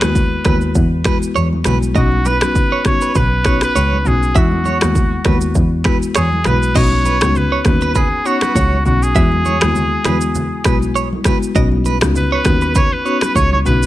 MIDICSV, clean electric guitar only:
0, 0, Header, 1, 2, 480
1, 0, Start_track
1, 0, Key_signature, 5, "major"
1, 0, Tempo, 600000
1, 1564, Time_signature, 4, 2, 24, 8
1, 11090, End_track
2, 0, Start_track
2, 0, Title_t, "Clean electric guitar"
2, 0, Program_c, 0, 27
2, 365, Note_on_c, 0, 71, 78
2, 460, Note_off_c, 0, 71, 0
2, 845, Note_on_c, 0, 71, 73
2, 940, Note_off_c, 0, 71, 0
2, 1085, Note_on_c, 0, 73, 80
2, 1180, Note_off_c, 0, 73, 0
2, 1326, Note_on_c, 0, 71, 74
2, 1421, Note_off_c, 0, 71, 0
2, 1565, Note_on_c, 0, 75, 94
2, 1660, Note_off_c, 0, 75, 0
2, 1805, Note_on_c, 0, 71, 77
2, 1900, Note_off_c, 0, 71, 0
2, 2178, Note_on_c, 0, 73, 74
2, 2255, Note_off_c, 0, 73, 0
2, 2417, Note_on_c, 0, 71, 87
2, 2495, Note_off_c, 0, 71, 0
2, 2524, Note_on_c, 0, 71, 86
2, 2619, Note_off_c, 0, 71, 0
2, 2765, Note_on_c, 0, 73, 76
2, 2897, Note_off_c, 0, 73, 0
2, 2897, Note_on_c, 0, 71, 74
2, 2975, Note_off_c, 0, 71, 0
2, 3005, Note_on_c, 0, 73, 76
2, 3178, Note_off_c, 0, 73, 0
2, 3484, Note_on_c, 0, 76, 100
2, 3580, Note_off_c, 0, 76, 0
2, 3724, Note_on_c, 0, 73, 75
2, 3820, Note_off_c, 0, 73, 0
2, 4205, Note_on_c, 0, 71, 72
2, 4300, Note_off_c, 0, 71, 0
2, 4685, Note_on_c, 0, 71, 73
2, 4780, Note_off_c, 0, 71, 0
2, 4925, Note_on_c, 0, 73, 71
2, 5020, Note_off_c, 0, 73, 0
2, 5164, Note_on_c, 0, 71, 73
2, 5259, Note_off_c, 0, 71, 0
2, 5405, Note_on_c, 0, 75, 92
2, 5500, Note_off_c, 0, 75, 0
2, 5645, Note_on_c, 0, 71, 76
2, 5740, Note_off_c, 0, 71, 0
2, 6017, Note_on_c, 0, 73, 72
2, 6095, Note_off_c, 0, 73, 0
2, 6257, Note_on_c, 0, 71, 85
2, 6335, Note_off_c, 0, 71, 0
2, 6364, Note_on_c, 0, 71, 91
2, 6460, Note_off_c, 0, 71, 0
2, 6605, Note_on_c, 0, 73, 79
2, 6700, Note_off_c, 0, 73, 0
2, 6737, Note_on_c, 0, 71, 73
2, 6815, Note_off_c, 0, 71, 0
2, 6846, Note_on_c, 0, 73, 77
2, 7018, Note_off_c, 0, 73, 0
2, 7325, Note_on_c, 0, 76, 107
2, 7420, Note_off_c, 0, 76, 0
2, 7565, Note_on_c, 0, 73, 74
2, 7660, Note_off_c, 0, 73, 0
2, 8045, Note_on_c, 0, 71, 75
2, 8140, Note_off_c, 0, 71, 0
2, 8524, Note_on_c, 0, 71, 76
2, 8619, Note_off_c, 0, 71, 0
2, 8764, Note_on_c, 0, 73, 75
2, 8859, Note_off_c, 0, 73, 0
2, 9005, Note_on_c, 0, 71, 73
2, 9100, Note_off_c, 0, 71, 0
2, 9245, Note_on_c, 0, 75, 95
2, 9340, Note_off_c, 0, 75, 0
2, 9486, Note_on_c, 0, 71, 74
2, 9581, Note_off_c, 0, 71, 0
2, 9858, Note_on_c, 0, 73, 75
2, 9936, Note_off_c, 0, 73, 0
2, 10098, Note_on_c, 0, 71, 82
2, 10175, Note_off_c, 0, 71, 0
2, 10206, Note_on_c, 0, 71, 90
2, 10301, Note_off_c, 0, 71, 0
2, 10445, Note_on_c, 0, 73, 78
2, 10540, Note_off_c, 0, 73, 0
2, 10577, Note_on_c, 0, 71, 76
2, 10654, Note_off_c, 0, 71, 0
2, 10685, Note_on_c, 0, 73, 76
2, 10858, Note_off_c, 0, 73, 0
2, 11090, End_track
0, 0, End_of_file